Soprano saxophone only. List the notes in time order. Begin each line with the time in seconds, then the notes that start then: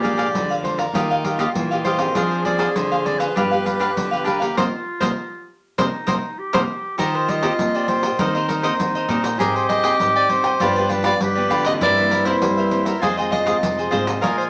0.01 D5
0.64 C5
0.79 A#4
1.85 C5
2.46 D5
2.76 C5
3.06 D5
3.19 B4
4.25 A#4
4.57 C5
5.01 C5
5.78 C5
6.08 C5
6.54 C5
6.99 A#4
7.16 C5
7.30 D#5
7.75 D5
7.89 C5
8.49 A#4
8.63 C5
9.41 A#4
9.56 C5
9.69 D#5
10.16 D5
10.30 C5
10.92 B4
11.06 D5
11.22 B4
11.66 D#5
11.83 D5
12.26 C5
12.86 A#4
13.03 G#4
13.32 D#5
14.22 A#4
14.38 C5